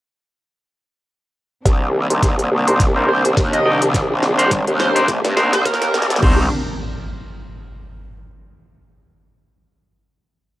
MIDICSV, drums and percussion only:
0, 0, Header, 1, 2, 480
1, 0, Start_track
1, 0, Key_signature, -3, "minor"
1, 0, Tempo, 571429
1, 1391, Time_signature, 4, 2, 24, 8
1, 8904, End_track
2, 0, Start_track
2, 0, Title_t, "Drums"
2, 1389, Note_on_c, 9, 36, 89
2, 1391, Note_on_c, 9, 38, 43
2, 1391, Note_on_c, 9, 42, 65
2, 1473, Note_off_c, 9, 36, 0
2, 1475, Note_off_c, 9, 38, 0
2, 1475, Note_off_c, 9, 42, 0
2, 1766, Note_on_c, 9, 42, 53
2, 1850, Note_off_c, 9, 42, 0
2, 1869, Note_on_c, 9, 36, 92
2, 1871, Note_on_c, 9, 38, 51
2, 1871, Note_on_c, 9, 42, 67
2, 1953, Note_off_c, 9, 36, 0
2, 1955, Note_off_c, 9, 38, 0
2, 1955, Note_off_c, 9, 42, 0
2, 2007, Note_on_c, 9, 42, 34
2, 2091, Note_off_c, 9, 42, 0
2, 2248, Note_on_c, 9, 37, 40
2, 2248, Note_on_c, 9, 42, 54
2, 2332, Note_off_c, 9, 37, 0
2, 2332, Note_off_c, 9, 42, 0
2, 2349, Note_on_c, 9, 36, 96
2, 2351, Note_on_c, 9, 38, 60
2, 2351, Note_on_c, 9, 42, 66
2, 2433, Note_off_c, 9, 36, 0
2, 2435, Note_off_c, 9, 38, 0
2, 2435, Note_off_c, 9, 42, 0
2, 2592, Note_on_c, 9, 37, 41
2, 2676, Note_off_c, 9, 37, 0
2, 2728, Note_on_c, 9, 42, 53
2, 2812, Note_off_c, 9, 42, 0
2, 2830, Note_on_c, 9, 36, 93
2, 2832, Note_on_c, 9, 38, 65
2, 2832, Note_on_c, 9, 42, 65
2, 2914, Note_off_c, 9, 36, 0
2, 2916, Note_off_c, 9, 38, 0
2, 2916, Note_off_c, 9, 42, 0
2, 2967, Note_on_c, 9, 42, 37
2, 3051, Note_off_c, 9, 42, 0
2, 3207, Note_on_c, 9, 42, 50
2, 3291, Note_off_c, 9, 42, 0
2, 3310, Note_on_c, 9, 36, 94
2, 3312, Note_on_c, 9, 38, 69
2, 3312, Note_on_c, 9, 42, 67
2, 3394, Note_off_c, 9, 36, 0
2, 3396, Note_off_c, 9, 38, 0
2, 3396, Note_off_c, 9, 42, 0
2, 3550, Note_on_c, 9, 38, 76
2, 3634, Note_off_c, 9, 38, 0
2, 3686, Note_on_c, 9, 42, 54
2, 3770, Note_off_c, 9, 42, 0
2, 3790, Note_on_c, 9, 36, 98
2, 3791, Note_on_c, 9, 38, 84
2, 3791, Note_on_c, 9, 42, 73
2, 3874, Note_off_c, 9, 36, 0
2, 3875, Note_off_c, 9, 38, 0
2, 3875, Note_off_c, 9, 42, 0
2, 3926, Note_on_c, 9, 42, 37
2, 4010, Note_off_c, 9, 42, 0
2, 4030, Note_on_c, 9, 38, 84
2, 4114, Note_off_c, 9, 38, 0
2, 4166, Note_on_c, 9, 42, 55
2, 4250, Note_off_c, 9, 42, 0
2, 4269, Note_on_c, 9, 36, 98
2, 4270, Note_on_c, 9, 38, 95
2, 4270, Note_on_c, 9, 42, 71
2, 4353, Note_off_c, 9, 36, 0
2, 4354, Note_off_c, 9, 38, 0
2, 4354, Note_off_c, 9, 42, 0
2, 4406, Note_on_c, 9, 38, 83
2, 4406, Note_on_c, 9, 42, 37
2, 4490, Note_off_c, 9, 38, 0
2, 4490, Note_off_c, 9, 42, 0
2, 4510, Note_on_c, 9, 38, 97
2, 4594, Note_off_c, 9, 38, 0
2, 4645, Note_on_c, 9, 38, 87
2, 4645, Note_on_c, 9, 42, 56
2, 4729, Note_off_c, 9, 38, 0
2, 4729, Note_off_c, 9, 42, 0
2, 4749, Note_on_c, 9, 36, 97
2, 4750, Note_on_c, 9, 38, 99
2, 4750, Note_on_c, 9, 42, 69
2, 4818, Note_off_c, 9, 38, 0
2, 4818, Note_on_c, 9, 38, 93
2, 4833, Note_off_c, 9, 36, 0
2, 4834, Note_off_c, 9, 42, 0
2, 4886, Note_off_c, 9, 38, 0
2, 4886, Note_on_c, 9, 38, 93
2, 4886, Note_on_c, 9, 42, 39
2, 4970, Note_off_c, 9, 38, 0
2, 4970, Note_off_c, 9, 42, 0
2, 4990, Note_on_c, 9, 38, 104
2, 5058, Note_off_c, 9, 38, 0
2, 5058, Note_on_c, 9, 38, 90
2, 5127, Note_off_c, 9, 38, 0
2, 5127, Note_on_c, 9, 38, 91
2, 5127, Note_on_c, 9, 42, 54
2, 5177, Note_off_c, 9, 38, 0
2, 5177, Note_on_c, 9, 38, 96
2, 5211, Note_off_c, 9, 42, 0
2, 5229, Note_on_c, 9, 49, 87
2, 5230, Note_on_c, 9, 36, 102
2, 5261, Note_off_c, 9, 38, 0
2, 5313, Note_off_c, 9, 49, 0
2, 5314, Note_off_c, 9, 36, 0
2, 8904, End_track
0, 0, End_of_file